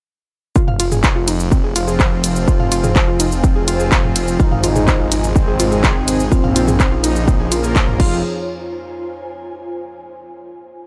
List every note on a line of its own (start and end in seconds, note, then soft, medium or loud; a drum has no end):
0.56 4.37 F1 medium
0.56 8.29 F2 medium
0.56 8.29 F3 medium
0.56 5.16 F4 medium
0.56 0.63 F4 medium
0.56 kick loud
0.56 shaker medium
0.68 0.78 F5 medium
0.68 mid tom medium
0.80 0.87 F4 loud
0.80 closed hi-hat loud
0.80 ride medium
0.80 shaker medium
0.92 1.02 G#4 medium
0.92 mid tom medium
0.92 shaker medium
1.04 1.11 C5 loud
1.04 kick loud
1.04 clap loud
1.04 shaker medium
1.15 1.26 F4 medium
1.15 6.32 C5 medium
1.28 1.35 D#4 medium
1.28 closed hi-hat loud
1.28 ride medium
1.28 shaker medium
1.40 shaker medium
1.52 1.59 C4 medium
1.52 kick loud
1.52 shaker medium
1.63 1.71 G#4 medium
1.63 7.09 G#5 medium
1.76 3.65 F3 medium
1.76 3.65 C4 medium
1.76 3.65 F4 loud
1.76 1.83 F4 loud
1.76 closed hi-hat loud
1.76 ride medium
1.76 shaker medium
1.88 1.98 G#4 medium
1.88 shaker medium
2.00 2.07 C5 medium
2.00 kick loud
2.00 clap loud
2.00 shaker medium
2.24 closed hi-hat loud
2.24 ride medium
2.24 shaker medium
2.36 shaker medium
2.48 2.55 F4 medium
2.48 kick loud
2.48 shaker medium
2.60 2.70 F5 medium
2.60 mid tom medium
2.72 2.79 F4 loud
2.72 closed hi-hat loud
2.72 ride medium
2.72 shaker medium
2.84 2.94 G#4 medium
2.84 mid tom medium
2.84 shaker medium
2.96 3.03 C5 loud
2.96 kick loud
2.96 clap loud
2.96 shaker medium
3.08 3.18 F4 medium
3.20 3.27 D#4 medium
3.20 closed hi-hat loud
3.20 ride medium
3.20 shaker medium
3.32 shaker medium
3.44 3.51 C4 medium
3.44 kick loud
3.44 shaker medium
3.56 3.63 G#4 medium
3.68 4.38 F3 medium
3.68 4.38 C4 medium
3.68 3.75 F4 loud
3.68 4.38 F4 loud
3.68 closed hi-hat loud
3.68 ride medium
3.68 shaker medium
3.80 3.90 G#4 medium
3.80 shaker medium
3.92 3.99 C5 loud
3.92 kick loud
3.92 clap loud
3.92 shaker medium
4.04 mid tom medium
4.16 closed hi-hat loud
4.16 ride medium
4.16 shaker medium
4.28 shaker medium
4.40 6.29 G#1 medium
4.40 6.30 C3 medium
4.40 6.30 D#3 medium
4.40 6.30 G#3 medium
4.40 5.26 D#4 loud
4.40 7.09 D#4 medium
4.40 4.47 F4 medium
4.40 kick loud
4.40 shaker medium
4.52 4.62 F5 medium
4.52 mid tom medium
4.64 4.71 F4 loud
4.64 closed hi-hat loud
4.64 ride medium
4.64 shaker medium
4.76 4.86 G#4 medium
4.76 mid tom medium
4.76 shaker medium
4.88 4.95 C5 loud
4.88 kick loud
4.88 clap loud
4.88 shaker medium
5.00 5.10 F4 medium
5.12 5.19 D#4 medium
5.12 closed hi-hat loud
5.12 ride medium
5.12 shaker medium
5.24 shaker medium
5.36 5.43 C4 medium
5.36 6.22 C4 loud
5.36 kick loud
5.36 shaker medium
5.48 5.55 G#4 medium
5.60 6.30 G#3 medium
5.60 6.30 D#4 medium
5.60 5.67 F4 loud
5.60 6.30 G#4 loud
5.60 closed hi-hat loud
5.60 ride medium
5.60 shaker medium
5.72 5.82 G#4 medium
5.72 shaker medium
5.84 5.91 C5 loud
5.84 kick loud
5.84 clap loud
5.84 shaker medium
6.08 closed hi-hat loud
6.08 ride medium
6.08 shaker medium
6.20 shaker medium
6.32 7.99 A#1 medium
6.32 7.98 C#3 medium
6.32 7.98 F3 medium
6.32 7.98 A#3 medium
6.32 6.94 C4 loud
6.32 6.39 F4 medium
6.32 7.99 F4 medium
6.32 kick loud
6.32 shaker medium
6.44 6.54 F5 medium
6.44 mid tom loud
6.56 6.63 F4 loud
6.56 closed hi-hat loud
6.56 ride medium
6.56 shaker medium
6.68 6.78 G#4 medium
6.68 mid tom medium
6.68 shaker medium
6.80 6.87 C5 loud
6.80 kick loud
6.80 clap loud
6.80 shaker medium
6.92 7.02 F4 medium
7.04 7.11 D#4 medium
7.04 7.48 D#4 loud
7.04 closed hi-hat loud
7.04 ride medium
7.04 shaker medium
7.16 shaker medium
7.28 7.35 C4 medium
7.28 kick loud
7.28 shaker medium
7.40 7.47 G#4 medium
7.52 8.00 A#3 medium
7.52 7.59 F4 medium
7.52 7.99 F4 medium
7.52 8.00 A#4 loud
7.52 closed hi-hat loud
7.52 ride medium
7.52 shaker medium
7.64 7.74 G#4 medium
7.64 shaker medium
7.76 7.83 C5 loud
7.76 kick loud
7.76 clap loud
7.76 shaker medium
7.88 mid tom medium
8.00 8.22 F1 loud
8.00 8.22 F3 medium
8.00 8.18 F3 medium
8.00 8.22 C4 medium
8.00 8.18 C4 medium
8.00 8.18 F4 medium
8.00 8.22 F4 medium
8.00 8.18 F4 medium
8.00 9.88 F4 medium
8.00 8.22 G#4 medium
8.00 kick loud
8.00 crash medium
8.07 9.88 C5 medium
8.38 10.12 G#5 medium